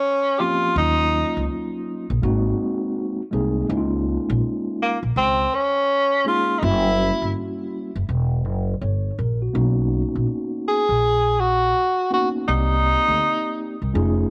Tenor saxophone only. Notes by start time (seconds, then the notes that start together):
Already playing: C#4
0.38 F4 G4
0.78 D#4
4.82 A#3
5.17 C4
5.54 C#4
6.28 F4
6.59 D#4
6.64 E4
10.68 G#4
11.40 F#4
12.13 F#4
12.48 D#4